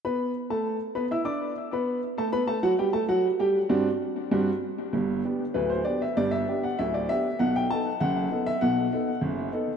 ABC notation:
X:1
M:2/4
L:1/16
Q:1/4=98
K:G
V:1 name="Upright piano"
[B,Bb]3 [A,Aa]3 [B,Bb] [Eee'] | [Ddd']3 [B,Bb]3 [A,Aa] [B,Bb] | [A,Aa] [F,Ff] [G,Gg] [A,Aa] [F,Ff]2 [G,Gg]2 | [G,,CDF]2 z2 [G,,CDF]2 z2 |
z4 B c d e | d e2 f e d e2 | f g a2 f3 e | f6 z2 |]
V:2 name="Upright piano"
z8 | z8 | z8 | z8 |
[G,,,G,,]2 [B,DG]2 [D,,,D,,]2 [B,DG]2 | [G,,,G,,]2 [B,DG]2 [D,,,D,,]2 [B,DG]2 | [B,,,B,,]2 [B,^DA]2 [F,,,F,,]2 [B,DA]2 | [B,,,B,,]2 [B,^DA]2 [F,,,F,,]2 [B,DA]2 |]